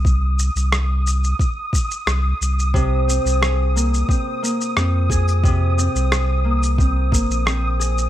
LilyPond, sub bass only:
\new Staff \with { instrumentName = "Sub bass" } { \clef bass \time 4/4 \key aes \major \tempo 4 = 89 c,8. c,4~ c,16 r4 c,8 c,8~ | c,8. c,4~ c,16 r4 f,4~ | f,8. c,4.~ c,16 g,,16 bes,,4~ bes,,16 | }